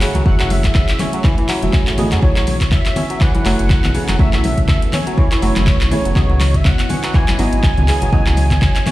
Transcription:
Already playing: synth stab A3 F#4 E5, analog synth pad A3 E4 G#4 C#5, kora C#4, analog synth lead F#5
0.01 kora C#3, clap, open hi-hat, high conga
0.15 analog synth bass C#2, kora F#3, closed hi-hat, muted conga, high conga
0.26 analog synth bass F#1, kora F#3, synth stab A3 F#4 E5, analog synth lead F#5, kick
0.40 kora F#3, clap, closed hi-hat, muted conga
0.50 analog synth lead E5, open hi-hat, high conga
0.64 kick, clap, closed hi-hat, muted conga
0.75 analog synth lead E5, kick, clap
0.89 clap, closed hi-hat
0.99 kora C#4, clap, open hi-hat, muted conga, high conga, low conga
1.13 kora F#3, closed hi-hat
1.24 kora E3, kick, clap, muted conga
1.38 kora E3, closed hi-hat
1.49 kora F#3, clap, open hi-hat, muted conga
1.63 analog synth bass E1, synth stab A3 F#4 E5, closed hi-hat, high conga
1.73 synth stab A3 F#4 G#5, kick, clap
1.87 analog synth bass A1, clap, closed hi-hat, muted conga
1.98 kora C#3, synth stab A3 F#4 D#5, open hi-hat, high conga, low conga
2.12 analog synth bass F#2, kora F#3, clap, closed hi-hat, muted conga
2.22 analog synth bass B1, kora F#3, synth stab A3 E4 C#5, analog synth pad B3 A4, analog synth lead C#5, kick
2.36 kora F#3, clap, muted conga
2.47 open hi-hat, high conga
2.61 kick, clap, closed hi-hat, muted conga
2.72 analog synth lead E5, kick, clap
2.86 clap, closed hi-hat
2.96 kora C#4, open hi-hat, muted conga, high conga, low conga
3.10 kora F#3, closed hi-hat
3.20 kora E3, analog synth lead F#5, kick, clap, muted conga
3.35 kora E3, closed hi-hat, high conga
3.46 analog synth bass F#1, kora F#3, synth stab A3 E4 C#5, clap, open hi-hat, muted conga
3.59 analog synth bass F#1, closed hi-hat
3.70 kick, clap
3.84 analog synth bass B1, clap, closed hi-hat, muted conga, low conga
3.95 kora C#3, open hi-hat, high conga
4.08 analog synth bass F#1, kora F#3, clap, closed hi-hat, muted conga, high conga
4.19 analog synth bass B1, kora F#3, synth stab A3 E4 C#5, analog synth pad E5, analog synth lead E5, kick
4.33 kora F#3, clap, muted conga
4.44 open hi-hat, high conga
4.58 kick, closed hi-hat, muted conga
4.68 analog synth lead E5, kick, clap
4.82 closed hi-hat
4.93 kora C#4, analog synth lead C#5, clap, open hi-hat, muted conga, high conga, low conga
5.07 kora F#3, closed hi-hat
5.18 kora E3, kick, muted conga
5.32 kora E3, clap, closed hi-hat
5.42 analog synth bass F#1, kora F#3, synth stab A3 E4 C#5, open hi-hat, muted conga
5.56 analog synth bass F#1, clap, closed hi-hat, high conga
5.67 kick, clap
5.81 analog synth bass B1, clap, closed hi-hat, muted conga
5.91 kora C#3, synth stab A3 E4 C#5, analog synth lead C#5, open hi-hat, high conga, low conga
6.05 analog synth bass F#1, kora F#3, closed hi-hat, muted conga
6.16 analog synth bass C#2, kora F#3, synth stab B3 E4 D#5, analog synth pad E4 C#5 D#5, kick, clap
6.30 kora F#3, muted conga
6.40 clap, open hi-hat, high conga
6.54 analog synth lead E5, kick, closed hi-hat, muted conga
6.65 analog synth lead F#5, kick, clap
6.79 clap, closed hi-hat
6.89 kora C#4, open hi-hat, muted conga, high conga, low conga
7.03 kora F#3, clap, closed hi-hat
7.14 kora E3, analog synth lead G#5, kick, clap, muted conga
7.28 kora E3, clap, closed hi-hat, high conga
7.39 analog synth bass G#1, kora F#3, synth stab B3 E4 D#5, open hi-hat, muted conga
7.53 analog synth bass G#1, closed hi-hat
7.63 kick, clap
7.77 analog synth bass C#2, closed hi-hat, muted conga, low conga
7.88 kora C#3, clap, open hi-hat, high conga
8.02 analog synth bass G#1, kora F#3, closed hi-hat, muted conga, high conga
8.13 analog synth bass C#2, kora F#3, synth stab B3 E4 D#5, kick
8.26 kora F#3, clap, muted conga
8.37 open hi-hat, high conga
8.51 kick, clap, closed hi-hat, muted conga, low conga
8.62 kick, clap
8.76 clap, closed hi-hat
8.86 kora C#4, clap, open hi-hat, muted conga, high conga, low conga

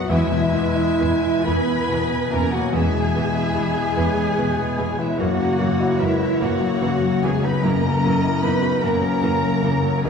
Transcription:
Already playing: grand piano F#2 B3 D#4 B4, cello section F#4, flute F#5
0.09 grand piano E2, double bass section E2, french horn section E3, viola section E3 B3, clarinet G#3, cello section E4, violin section E5 G#5, flute E5
0.31 grand piano B2
0.53 double bass section E2, viola section E3 B3, grand piano B3
0.76 grand piano E4
1.00 double bass section E2, viola section E3 B3, grand piano B4
1.21 grand piano E4
1.45 double bass section E2, viola section E3 B3, french horn section B3, clarinet E4, grand piano B4, cello section B4, flute B5, violin section B5
1.67 grand piano B3
1.88 double bass section E2, grand piano B2, viola section E3 B3
2.10 grand piano B3
2.30 double bass section E2, grand piano B2, viola section E3 B3, french horn section A#3, clarinet C#4, cello section A#4, flute A#5, violin section A#5
2.51 french horn section F#3, clarinet A#3, grand piano B3, cello section F#4, flute F#5, violin section F#5
2.72 grand piano E2, double bass section E2, viola section E3 B3, french horn section G#3, clarinet B3, cello section G#4, violin section E5 G#5, flute G#5
2.95 grand piano B2
3.15 double bass section E2, viola section E3 B3, grand piano B3
3.35 grand piano E4
3.56 double bass section E2, viola section E3 B3, grand piano B4
3.77 grand piano E4
3.96 double bass section E2, viola section E3 B3, grand piano B4, violin section C#5
4.18 grand piano B3
4.37 double bass section E2, grand piano B2, viola section E3 B3, violin section B4
4.59 grand piano B3
4.78 double bass section E2, grand piano B2, viola section E3 B3, violin section C#5
4.99 french horn section E3, clarinet G#3, grand piano B3, cello section E4, flute E5, violin section E5
5.18 grand piano F#2, double bass section F#2, viola section E3 A#3, french horn section F#3, clarinet A#3, cello section F#4, flute F#5, violin section F#5
5.40 grand piano C#3
5.59 double bass section F#2, viola section E3 A#3, grand piano F#3
5.80 grand piano E4
6.00 double bass section F#2, french horn section E3, viola section E3 A#3, clarinet G#3, cello section E4, grand piano A#4, violin section E5, flute E5
6.19 grand piano F#4
6.40 double bass section F#2, viola section E3 A#3, french horn section F#3, clarinet A#3, cello section F#4, grand piano A#4, flute F#5, violin section F#5
6.61 grand piano F#3
6.81 double bass section F#2, grand piano C#3, viola section E3 A#3
7.02 grand piano F#3
7.22 double bass section F#2, grand piano C#3, viola section E3 A#3, french horn section G#3, clarinet B3, cello section G#4, flute G#5, violin section G#5
7.43 grand piano F#3, french horn section B3, clarinet D#4, cello section B4, flute B5, violin section B5
7.62 grand piano F#2, double bass section F#2, viola section E3 A#3, french horn section A#3, clarinet C#4, cello section A#4, violin section D#5 A#5, flute A#5
7.83 grand piano C#3
8.04 double bass section F#2, viola section E3 A#3, grand piano F#3
8.24 grand piano E4
8.43 double bass section F#2, viola section E3 A#3, french horn section B3, clarinet D#4, grand piano A#4, cello section B4, flute B5, violin section B5
8.62 grand piano F#4
8.82 double bass section F#2, viola section E3 A#3, french horn section A#3, clarinet C#4, grand piano A#4, cello section A#4, violin section C#5 A#5, flute A#5
9.02 grand piano F#3
9.21 double bass section F#2, grand piano C#3, viola section E3 A#3
9.41 grand piano F#3
9.62 double bass section F#2, grand piano C#3, viola section E3 A#3
9.83 grand piano F#3
10.04 grand piano B1, double bass section B1, viola section D#3 B3, french horn section G#3, clarinet B3, cello section G#4, violin section B4 G#5, flute G#5

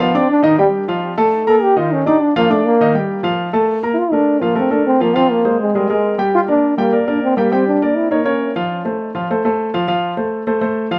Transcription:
0.00 grand piano F3 F4 F5, trombone B3
0.15 trombone C4, grand piano D4 D5 D6
0.30 trombone D4
0.43 grand piano D#3 D#4 D#5, trombone D#4
0.58 grand piano G3 G4 G5, trombone G3
0.88 grand piano F3 F4 F5
1.18 grand piano A3 A4 A5
1.47 grand piano A#3 A#4 A#5, trombone A4
1.62 trombone G4
1.76 grand piano D#3 D#4 D#5, trombone F4
1.92 trombone C#4
2.06 grand piano D4 D5 D6, trombone D#4
2.22 trombone D4
2.36 grand piano F3 F4 F5, trombone A#3
2.50 trombone A3, grand piano D4 D5 D6
2.66 trombone A#3
2.81 grand piano D#3 D#4 D#5
2.95 grand piano G3 G4 G5
3.23 grand piano F3 F4 F5
3.53 grand piano A3 A4 A5
3.83 grand piano A#3 A#4 A#5
3.94 trombone E4
3.98 trombone F4
4.12 grand piano A3 A4 A#4, trombone D4
4.41 grand piano F3 F4 F5, trombone A#3
4.55 grand piano A3 A4 A#4, trombone C4
4.71 grand piano A3 A4 A#4, trombone D4
4.87 trombone C4
5.00 grand piano F3 F4 F5, trombone A#3
5.15 grand piano F3 F4 F5, trombone C4
5.31 trombone A#3
5.45 grand piano G#3 G#4 C5
5.60 trombone G#3
5.75 trombone G3, grand piano G#3 G#4 A#4
5.90 grand piano G#3 G#4 A#4, trombone G#3
6.18 grand piano G3 G4 G5
6.35 trombone F4
6.48 grand piano A#3 A#4 D5, trombone D4
6.78 grand piano G3 G4 G5, trombone A#3
6.92 grand piano A#3 A#4 D5
7.08 grand piano A#3 A#4 D5, trombone D4
7.23 trombone C4
7.37 grand piano G3 G4 G5, trombone A#3
7.52 grand piano G3 G4 G5, trombone C4
7.67 trombone D4
7.82 grand piano A#3 A#4 D5
7.96 trombone E4
8.11 grand piano A#3 A#4 C#5, trombone D#4
8.25 grand piano A#3 A#4 C#5, trombone C#4
8.56 grand piano F3 F4 F5
8.85 grand piano A3 A4 C5
9.15 grand piano F3 F4 F5
9.30 grand piano A3 A4 C5
9.45 grand piano A3 A4 C5
9.74 grand piano F3 F4 F5
9.88 grand piano F3 F4 F5
10.17 grand piano A3 A4 C5
10.47 grand piano A3 A4 C5
10.61 grand piano A3 A4 C5
10.91 grand piano F3 F4 F5

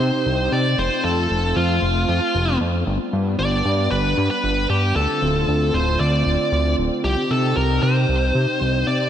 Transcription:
Already playing: analog synth pad C3 C4 D#4 G4, lead electric guitar C5
0.00 analog synth bass C3
0.26 analog synth bass C2
0.52 analog synth bass C3, lead electric guitar D5
0.78 analog synth bass F1, analog synth pad A3 F4, lead electric guitar C5
1.04 analog synth bass F2, lead electric guitar A4
1.30 analog synth bass F1
1.56 analog synth bass F2, lead electric guitar F4
1.82 analog synth bass F1
2.09 analog synth bass F2
2.35 analog synth bass F1
2.61 analog synth bass F2
2.87 analog synth bass G1, analog synth pad G3 B3 D4
3.13 analog synth bass G2
3.39 analog synth bass G1, lead electric guitar D5
3.65 analog synth bass G2
3.91 analog synth bass G1, lead electric guitar B4
4.18 analog synth bass G2
4.31 lead electric guitar B4
4.44 analog synth bass G1
4.70 analog synth bass G2, lead electric guitar G4
4.96 analog synth bass D2, analog synth pad D3 A3 C4 F4, lead electric guitar A4
5.22 analog synth bass D1
5.48 analog synth bass D2
5.74 analog synth bass D1, lead electric guitar C5
6.00 analog synth bass D2, lead electric guitar D5
6.26 analog synth bass D1
6.52 analog synth bass D2
6.78 analog synth bass D1
7.04 analog synth bass C2, analog synth pad C3 D#4 G4, lead electric guitar G4
7.31 analog synth bass C3, lead electric guitar A4
7.57 analog synth bass C2, lead electric guitar A#4
7.83 analog synth bass C3, lead electric guitar C5
8.09 analog synth bass C2
8.35 analog synth bass C3
8.61 analog synth bass C2
8.87 analog synth bass C3, lead electric guitar D5

